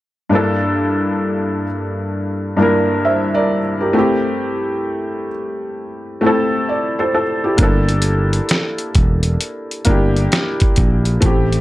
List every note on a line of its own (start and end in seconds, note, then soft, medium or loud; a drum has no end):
0.29 1.62 G2 medium
0.29 1.63 A#3 medium
0.29 1.64 D4 medium
0.34 1.64 E4 medium
0.34 1.65 A4 medium
2.57 3.57 G2 medium
2.57 3.58 A#3 medium
2.57 3.58 D4 medium
2.57 3.59 E4 medium
2.62 3.06 A#4 medium
3.05 3.33 C5 medium
3.05 3.33 E5 medium
3.34 3.78 A#4 medium
3.34 3.77 D5 medium
3.80 3.97 G4 soft
3.80 4.23 A#4 medium
3.93 5.26 A3 medium
3.93 5.27 C4 medium
3.93 5.28 E4 medium
3.98 5.29 G4 medium
6.21 7.21 A3 medium
6.21 7.22 C4 medium
6.21 6.69 E4 medium
6.26 6.70 A4 medium
6.69 6.97 D5 medium
6.99 7.13 A4 medium
6.99 7.13 C5 medium
7.14 7.42 A4 medium
7.44 7.59 E4 medium
7.44 7.87 G4 medium
7.57 8.39 G1 medium
7.57 8.90 A#3 medium
7.57 8.91 D4 medium
7.57 8.92 E4 medium
7.57 kick loud
7.57 closed hi-hat medium
7.63 8.93 A4 medium
7.89 closed hi-hat soft
8.02 closed hi-hat medium
8.33 closed hi-hat soft
8.49 snare loud
8.49 closed hi-hat medium
8.78 closed hi-hat soft
8.95 9.36 E1 medium
8.95 kick medium
8.95 closed hi-hat medium
9.23 closed hi-hat medium
9.41 closed hi-hat medium
9.71 closed hi-hat soft
9.85 10.27 G1 medium
9.85 10.85 A#3 medium
9.85 10.86 D4 medium
9.85 10.87 E4 medium
9.85 kick medium
9.85 closed hi-hat medium
9.90 10.88 G4 medium
10.16 closed hi-hat soft
10.32 snare medium
10.32 closed hi-hat medium
10.60 kick medium
10.60 closed hi-hat soft
10.76 11.18 A#1 medium
10.76 kick medium
10.76 closed hi-hat medium
11.05 closed hi-hat soft
11.21 11.61 A1 medium
11.21 11.61 A3 medium
11.21 11.61 C4 medium
11.21 11.61 E4 medium
11.21 kick loud
11.21 closed hi-hat medium
11.26 11.61 G4 medium
11.53 closed hi-hat soft